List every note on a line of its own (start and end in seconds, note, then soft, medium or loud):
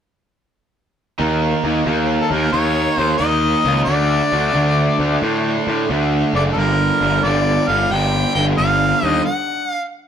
1.19 1.52 D#2 medium
1.19 1.63 D#3 medium
1.19 1.63 A#3 medium
1.19 1.64 D#4 medium
1.64 1.80 D#2 medium
1.64 1.85 D#3 medium
1.64 1.85 A#3 medium
1.64 1.86 D#4 medium
1.86 2.19 D#2 medium
1.86 2.30 D#3 medium
1.86 2.30 A#3 medium
1.86 2.31 D#4 medium
2.21 2.33 A4 soft
2.31 2.47 D#2 medium
2.31 2.52 D#3 medium
2.31 2.52 A#3 medium
2.31 2.53 D#4 medium
2.31 2.52 A#4 medium
2.53 2.86 D#2 medium
2.53 2.96 D#3 medium
2.53 2.97 A#3 medium
2.53 2.97 D#4 medium
2.53 2.98 C#5 medium
2.98 3.15 D#2 medium
2.98 3.19 D#3 medium
2.98 3.19 A#3 medium
2.98 3.19 D#4 medium
2.98 3.17 C5 medium
3.17 3.53 D#2 medium
3.17 3.63 D#3 medium
3.17 3.63 A#3 medium
3.17 3.64 D#4 medium
3.17 3.83 D#5 medium
3.65 3.82 C#2 medium
3.65 3.86 D#3 medium
3.65 3.87 A#3 medium
3.65 3.87 D#4 medium
3.84 4.20 D2 medium
3.84 4.31 D3 medium
3.84 4.33 A3 medium
3.84 4.33 D4 medium
3.84 5.17 D5 medium
4.32 4.49 D2 medium
4.32 4.53 D3 medium
4.32 4.55 A3 medium
4.32 4.55 D4 medium
4.54 4.87 D2 medium
4.54 4.98 D3 medium
4.54 4.99 A3 medium
4.54 5.00 D4 medium
4.99 5.16 D2 medium
4.99 5.21 D3 medium
4.99 5.22 A3 medium
4.99 5.22 D4 medium
5.22 5.55 A2 medium
5.22 5.66 D3 medium
5.22 5.68 A3 medium
5.22 5.68 D4 medium
5.67 5.84 A2 medium
5.67 5.89 D3 medium
5.67 5.90 A3 medium
5.67 5.90 D4 medium
5.90 6.23 D2 medium
5.90 6.33 D3 medium
5.90 6.34 A3 medium
5.90 6.35 D4 medium
6.33 6.50 F#1 medium
6.33 6.56 D3 medium
6.33 6.57 A3 medium
6.33 9.75 D4 medium
6.33 6.44 D5 medium
6.53 6.89 G1 medium
6.53 7.00 G2 medium
6.53 7.01 D3 medium
6.53 6.59 A4 medium
6.57 7.01 G3 medium
6.57 7.25 A#4 medium
7.01 7.18 G1 medium
7.01 7.23 G2 medium
7.01 7.24 D3 medium
7.01 7.24 G3 medium
7.24 7.57 G1 medium
7.24 7.68 G2 medium
7.24 7.68 D3 medium
7.24 7.69 G3 medium
7.24 7.70 D5 medium
7.68 7.85 G1 medium
7.68 7.91 G2 medium
7.68 7.91 D3 medium
7.68 7.91 G3 medium
7.68 7.93 F5 medium
7.91 8.24 G1 medium
7.91 8.35 G2 medium
7.91 8.35 D3 medium
7.91 8.36 G3 medium
7.91 8.34 G5 loud
8.35 8.52 G1 medium
8.35 8.58 G2 medium
8.35 8.58 D3 medium
8.35 8.58 G3 medium
8.35 8.45 G5 medium
8.58 8.91 G1 medium
8.58 9.02 G2 medium
8.58 9.03 D3 medium
8.58 9.03 G3 medium
8.58 9.06 F5 medium
9.03 9.20 D#2 medium
9.03 9.25 G2 medium
9.03 9.25 D3 medium
9.03 9.25 G3 medium
9.03 9.22 D#5 medium
9.25 9.70 F#5 medium
9.70 9.89 F5 medium